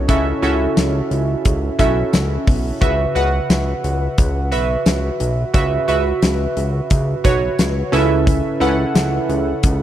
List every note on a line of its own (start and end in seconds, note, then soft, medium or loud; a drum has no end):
0.00 0.10 B1 medium
0.00 0.08 C#4 medium
0.00 0.09 E4 medium
0.00 0.09 F#4 medium
0.00 0.09 A4 medium
0.00 2.83 C#5 medium
0.08 0.33 C#2 loud
0.08 1.07 C#3 medium
0.08 0.35 C#4 medium
0.08 0.35 E4 medium
0.08 0.35 F#4 medium
0.08 0.35 A4 medium
0.08 0.35 E5 medium
0.08 kick loud
0.08 closed hi-hat medium
0.42 0.67 C#2 loud
0.42 1.47 C#4 medium
0.42 1.47 E4 medium
0.42 1.47 F#4 medium
0.42 1.47 A4 medium
0.42 1.47 E5 medium
0.42 closed hi-hat medium
0.77 1.01 C#2 loud
0.77 snare loud
0.77 closed hi-hat medium
0.77 tambourine medium
1.11 1.36 C#2 medium
1.11 closed hi-hat medium
1.45 1.70 C#2 loud
1.45 kick medium
1.45 closed hi-hat medium
1.79 2.04 B1 loud
1.79 2.57 C#4 medium
1.79 2.57 E4 medium
1.79 2.57 F#4 medium
1.79 2.57 A4 medium
1.79 2.58 E5 medium
1.79 kick medium
1.79 closed hi-hat medium
2.13 2.38 C#2 medium
2.13 snare loud
2.13 closed hi-hat medium
2.13 tambourine medium
2.47 2.72 B1 loud
2.47 kick loud
2.47 open hi-hat medium
2.81 3.06 C#2 loud
2.81 3.80 C#3 medium
2.81 3.07 F#4 medium
2.81 3.08 B4 medium
2.81 3.08 E5 medium
2.81 kick loud
2.81 closed hi-hat medium
3.15 3.40 C#2 loud
3.15 4.19 F#4 medium
3.15 4.20 B4 medium
3.15 4.20 F#5 medium
3.15 closed hi-hat medium
3.50 3.74 C#2 loud
3.50 snare loud
3.50 closed hi-hat medium
3.50 tambourine medium
3.84 4.08 C#2 loud
3.84 closed hi-hat medium
4.18 4.54 C#2 loud
4.18 kick loud
4.18 closed hi-hat medium
4.52 4.77 B1 loud
4.52 5.30 F#4 medium
4.52 5.30 B4 medium
4.52 5.30 E5 medium
4.52 closed hi-hat medium
4.86 5.11 C#2 loud
4.86 snare loud
4.86 closed hi-hat medium
4.86 tambourine medium
5.20 5.45 B1 medium
5.20 closed hi-hat medium
5.54 5.79 C#2 loud
5.54 6.53 C#3 medium
5.54 5.80 F#4 medium
5.54 5.80 B4 medium
5.54 5.81 E5 medium
5.54 kick loud
5.54 closed hi-hat medium
5.88 6.13 C#2 loud
5.88 6.92 F#4 medium
5.88 6.92 B4 medium
5.88 6.93 E5 medium
5.88 closed hi-hat medium
6.22 6.47 C#2 loud
6.22 snare loud
6.22 closed hi-hat medium
6.22 tambourine medium
6.57 6.81 C#2 medium
6.57 closed hi-hat medium
6.90 7.15 C#2 loud
6.90 kick loud
6.90 closed hi-hat medium
7.24 7.49 B1 loud
7.24 7.93 F#4 medium
7.24 7.92 B4 medium
7.24 7.93 C#5 medium
7.24 kick loud
7.24 closed hi-hat medium
7.59 7.83 C#2 loud
7.59 snare loud
7.59 closed hi-hat medium
7.59 tambourine medium
7.92 8.42 C#2 loud
7.92 8.91 C#3 medium
7.92 8.47 C#4 medium
7.92 8.47 E4 medium
7.92 8.47 A4 medium
7.92 8.48 B4 medium
7.92 8.48 E5 loud
7.92 closed hi-hat medium
8.27 kick loud
8.27 closed hi-hat medium
8.60 8.86 C#2 loud
8.60 9.65 C#4 medium
8.60 9.65 E4 medium
8.60 9.65 A4 medium
8.60 9.65 B4 medium
8.60 9.65 F#5 medium
8.60 closed hi-hat medium
8.95 9.20 C#2 loud
8.95 snare loud
8.95 closed hi-hat medium
8.95 tambourine medium
9.29 9.54 C#2 loud
9.29 closed hi-hat medium
9.63 9.82 C#2 loud
9.63 kick loud
9.63 closed hi-hat medium